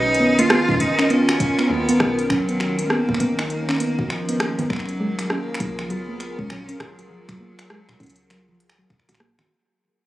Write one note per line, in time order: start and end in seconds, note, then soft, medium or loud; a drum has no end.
0.00 0.44 B1 loud
0.00 4.66 D#3 medium
0.00 4.66 C#4 medium
0.00 0.40 D#4 loud
0.00 2.28 F4 medium
0.00 4.66 A#4 loud
0.14 closed hi-hat soft
0.20 0.36 B3 medium
0.39 0.49 A#3 medium
0.39 0.82 F4 loud
0.39 closed hi-hat medium
0.50 0.57 B3 loud
0.50 finger snap medium
0.50 cross-stick loud
0.69 0.75 D#4 medium
0.69 kick loud
0.72 kick medium
0.74 kick medium
0.77 1.64 F#1 loud
0.77 1.12 D#4 loud
0.77 kick medium
0.77 closed hi-hat medium
0.99 1.05 C#4 loud
0.99 finger snap medium
1.10 1.21 B3 medium
1.10 1.72 C#4 loud
1.10 closed hi-hat medium
1.29 1.35 F#4 medium
1.29 finger snap medium
1.40 kick loud
1.40 closed hi-hat medium
1.59 1.69 B3 medium
1.59 finger snap medium
1.70 1.93 D#2 medium
1.70 1.86 A#3 medium
1.70 2.30 B3 loud
1.89 1.93 B3 loud
1.89 closed hi-hat medium
2.00 3.14 B1 loud
2.00 2.11 D#4 medium
2.00 finger snap soft
2.00 cross-stick loud
2.00 low conga loud
2.19 closed hi-hat medium
2.30 2.92 F#3 loud
2.30 2.41 C#4 loud
2.30 4.68 D#4 medium
2.30 finger snap medium
2.30 kick loud
2.49 2.55 B3 medium
2.49 closed hi-hat soft
2.60 2.71 F#4 medium
2.60 finger snap medium
2.79 closed hi-hat medium
2.90 3.50 A#3 loud
2.90 3.06 B3 medium
2.90 cross-stick loud
3.09 3.19 A#3 medium
3.09 kick loud
3.09 low conga medium
3.14 finger snap medium
3.20 4.04 F#1 loud
3.20 3.27 B3 loud
3.20 closed hi-hat medium
3.39 3.45 D#4 medium
3.39 finger snap medium
3.50 4.12 A#3 loud
3.50 closed hi-hat medium
3.69 3.75 C#4 loud
3.69 finger snap medium
3.69 finger snap soft
3.71 finger snap soft
3.76 finger snap soft
3.78 3.91 B3 medium
3.78 finger snap soft
3.78 closed hi-hat medium
3.99 4.05 F#4 medium
3.99 kick loud
4.10 4.70 F3 loud
4.10 finger snap medium
4.29 4.39 B3 medium
4.29 closed hi-hat medium
4.40 4.56 A#3 medium
4.40 finger snap medium
4.40 cross-stick loud
4.59 4.63 B3 loud
4.59 closed hi-hat medium
4.59 low conga loud
4.70 5.24 F#1 loud
4.70 9.46 F#3 medium
4.70 5.32 F#3 loud
4.70 4.81 A#3 medium
4.70 9.46 F4 medium
4.70 9.46 G#4 medium
4.70 9.46 A#4 medium
4.70 finger snap medium
4.70 kick loud
4.73 finger snap soft
4.76 finger snap soft
4.79 finger snap soft
4.86 finger snap soft
4.86 closed hi-hat soft
5.00 5.11 G#3 loud
5.19 5.25 F#3 medium
5.19 finger snap medium
5.19 closed hi-hat medium
5.30 5.92 A#3 loud
5.30 5.41 C#4 medium
5.30 cross-stick loud
5.54 finger snap medium
5.60 6.44 C#2 loud
5.60 5.76 F#3 medium
5.60 kick loud
5.60 closed hi-hat medium
5.79 5.89 F3 medium
5.79 finger snap medium
5.90 5.97 F#3 loud
5.90 6.40 B3 loud
5.90 closed hi-hat medium
6.09 6.15 A#3 medium
6.20 finger snap medium
6.20 closed hi-hat medium
6.39 6.45 G#3 loud
6.39 6.82 C#4 loud
6.39 kick loud
6.50 6.73 A#1 medium
6.50 6.61 F#3 medium
6.50 finger snap medium
6.69 6.75 C#4 medium
6.69 closed hi-hat medium
6.80 7.94 F#1 loud
6.80 8.90 F#3 medium
6.80 finger snap medium
6.80 cross-stick loud
6.80 low conga loud
6.99 7.09 F#3 medium
6.99 closed hi-hat medium
7.10 7.26 F3 medium
7.29 7.33 F#3 loud
7.29 finger snap medium
7.29 kick loud
7.29 closed hi-hat medium
7.40 7.51 A#3 medium
7.59 finger snap medium
7.59 closed hi-hat medium
7.70 7.81 G#3 loud
7.70 cross-stick loud
7.89 7.95 F#3 medium
7.89 finger snap medium
7.89 low conga medium
8.00 8.84 C#2 loud
8.00 8.11 C#4 medium
8.00 kick loud
8.00 closed hi-hat soft
8.03 closed hi-hat medium
8.06 closed hi-hat medium
8.10 closed hi-hat medium
8.16 closed hi-hat medium
8.30 8.46 F#3 medium
8.30 finger snap medium
8.30 closed hi-hat medium
8.49 8.59 F3 medium
8.60 closed hi-hat medium
8.70 finger snap medium
8.79 8.83 F#3 medium
8.90 finger snap soft
8.90 kick loud
9.00 finger snap soft
9.09 9.44 A#1 medium
9.09 9.15 F#4 loud
9.09 finger snap soft
9.09 closed hi-hat loud
9.15 finger snap soft
9.20 9.36 A#3 loud
9.20 cross-stick loud
9.39 9.49 F#4 loud
9.39 finger snap medium
9.39 low conga loud